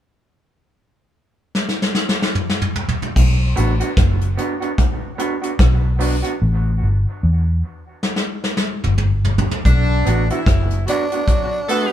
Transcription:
1.55 snare
1.69 snare
1.82 snare
1.95 snare
2.09 snare
2.22 snare
2.35 mid tom
2.50 snare
2.62 mid tom
2.76 floor tom
2.89 floor tom
3.02 floor tom
3.16 fingered electric bass B1, kick, crash
3.56 fingered electric bass A1, clean electric guitar B3 D4 F#4, closed hi-hat
3.80 clean electric guitar B3 D4 F#4, closed hi-hat
3.97 fingered electric bass F#1, kick, cross-stick, closed hi-hat
4.21 closed hi-hat
4.37 clean electric guitar B3 D4 F#4, closed hi-hat
4.60 clean electric guitar B3 D4 F#4, closed hi-hat
4.78 kick, closed hi-hat
5.18 clean electric guitar B3 D4 F#4, closed hi-hat
5.42 clean electric guitar B3 D4 F#4, closed hi-hat
5.59 fingered electric bass B1, kick, cross-stick, closed hi-hat
5.99 clean electric guitar B3 D4 F#4, open hi-hat
6.22 clean electric guitar B3 D4 F#4, closed hi-hat
6.42 fingered electric bass A1
6.83 fingered electric bass G1
7.23 fingered electric bass E2
8.03 snare
8.16 snare
8.44 snare
8.57 snare
8.84 fingered electric bass G1, mid tom
8.98 mid tom
9.25 floor tom
9.38 floor tom
9.51 floor tom
9.65 fingered electric bass B1, horn section D3 D4, kick, closed hi-hat
10.05 fingered electric bass A1, clean electric guitar B3 D4 F#4, closed hi-hat
10.29 horn section E3 E4, clean electric guitar B3 D4 F#4, closed hi-hat
10.46 fingered electric bass F#1, kick, cross-stick, closed hi-hat
10.70 closed hi-hat
10.86 horn section F#3 F#4, clean electric guitar B3 D4 F#4, closed hi-hat
10.90 tenor saxophone D4
11.12 clean electric guitar B3 D4 F#4, closed hi-hat
11.26 horn section F#3 F#4, kick, closed hi-hat
11.68 horn section A3 A4, clean electric guitar B3 D4 F#4, tenor saxophone B3, closed hi-hat

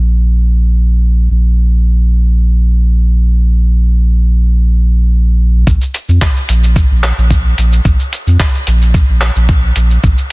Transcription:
Already playing: sub bass A#1
1.30 sub bass A#1
5.67 sub bass A#1, kick, shaker
5.81 shaker
5.94 closed hi-hat, shaker
6.08 sub bass F2, shaker
6.22 kick, clap, shaker
6.36 shaker
6.49 sub bass A#1, closed hi-hat, shaker
6.63 shaker
6.76 kick, shaker
6.91 sub bass A#1
7.04 clap, closed hi-hat, shaker
7.18 sub bass A#1, shaker
7.31 kick, shaker
7.58 sub bass A#1, closed hi-hat, shaker
7.72 shaker
7.85 sub bass A#1, kick, shaker
8.00 shaker
8.13 closed hi-hat, shaker
8.27 sub bass F2, shaker
8.40 kick, clap, shaker
8.54 shaker
8.67 sub bass A#1, closed hi-hat, shaker
8.82 shaker
8.94 kick, shaker
9.09 sub bass A#1
9.21 clap, closed hi-hat, shaker
9.36 sub bass A#1, shaker
9.48 kick, shaker
9.76 sub bass A#1, closed hi-hat, shaker
9.90 shaker
10.03 sub bass A#1, kick, shaker
10.18 shaker

